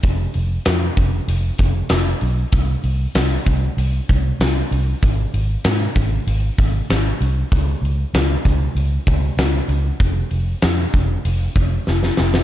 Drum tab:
HH |o-o-o-o-o-o-o-o-|o-o-o-o-o-o-o-o-|o-o-o-o-o-o-o-o-|o-o-o-o-o-o-o-o-|
SD |----o-------o---|----o-------o---|----o-------o---|----o-------o---|
BD |o-----o---o-----|o-----o---o-----|o-----o---o-----|o-----o---o-----|

HH |o-o-o-o-o-o-----|
SD |----o-------oooo|
BD |o-----o---o-----|